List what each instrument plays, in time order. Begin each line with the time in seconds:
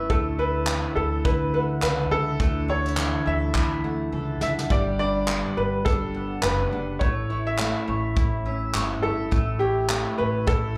Already playing: nylon-string guitar A2 A3 C#4 E4, mandolin A3 E4 C#5 E5, upright piano B4
0.10 upright bass D2, nylon-string guitar D3, mandolin A3, upright piano A4, kick
0.38 nylon-string guitar E4, mandolin A4, upright piano B4
0.67 nylon-string guitar E3, mandolin E4, clap
0.95 upright bass D2, upright piano A4, mandolin A4
1.25 nylon-string guitar D3, mandolin E4, upright piano B4, kick
1.54 nylon-string guitar A3, upright piano B4, mandolin F#5
1.82 upright bass C#2, nylon-string guitar E3, mandolin A4, upright piano B4, clap
2.11 upright bass C#2, nylon-string guitar E4, upright piano A4, mandolin F#5
2.40 upright bass D2, nylon-string guitar D3, mandolin A3, kick
2.68 nylon-string guitar D4, mandolin A4, upright piano C#5
2.86 nylon-string guitar E4
2.97 nylon-string guitar E3, mandolin E4, clap
3.26 upright bass D2, mandolin A4, upright piano E5
3.54 nylon-string guitar D3, mandolin E4, kick, clap
3.84 nylon-string guitar A3, mandolin F#5
4.12 upright bass C#2, nylon-string guitar E3, mandolin A4
4.41 upright bass C#2, nylon-string guitar E4, upright piano E5, mandolin F#5, snare
4.59 snare
4.70 upright bass G1, mandolin G3, nylon-string guitar G3, upright piano D5, kick
4.99 nylon-string guitar D4, mandolin B4, upright piano D5
5.27 nylon-string guitar B3, mandolin D4, clap
5.57 upright bass G1, upright piano B4, mandolin B4
5.85 nylon-string guitar G3, mandolin D4, upright piano A4, kick
6.15 nylon-string guitar B3, mandolin F#5
6.42 upright bass F#1, nylon-string guitar B3, upright piano B4, mandolin B4, clap
6.71 upright bass F#1, nylon-string guitar D4, mandolin F#5
6.99 upright bass A1, nylon-string guitar A2, mandolin A3, upright piano C#5, kick
7.30 nylon-string guitar E4, mandolin C#5
7.47 upright piano E5
7.59 nylon-string guitar A3, mandolin E4, clap
7.88 upright bass A1, mandolin C#5
8.16 nylon-string guitar A2, mandolin E4, kick
8.46 nylon-string guitar C#4, mandolin E5
8.74 upright bass G1, nylon-string guitar A3, mandolin C#5, clap
9.02 upright bass G1, nylon-string guitar E4, upright piano A4, mandolin E5
9.31 upright bass A1, nylon-string guitar A2, mandolin A3, kick
9.59 nylon-string guitar E4, upright piano G4, mandolin C#5
9.89 nylon-string guitar A3, mandolin E4, clap
10.18 upright bass A1, upright piano B4, mandolin C#5
10.47 nylon-string guitar A2, mandolin E4, upright piano A4, kick